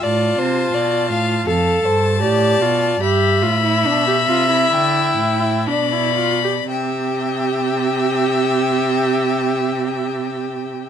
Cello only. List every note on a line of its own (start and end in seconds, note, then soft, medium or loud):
0.03 0.37 A2 medium
0.39 0.73 C3 medium
0.73 1.12 B2 medium
1.10 1.46 A2 medium
1.47 1.84 F2 medium
1.84 2.24 G2 medium
2.22 2.61 A2 medium
2.61 3.00 B2 medium
3.01 3.43 G2 medium
3.42 3.86 A2 medium
3.84 4.29 B2 medium
4.27 4.71 C3 medium
4.72 5.18 D3 medium
5.18 5.68 A2 medium
5.67 6.68 B2 medium
6.69 10.89 C3 medium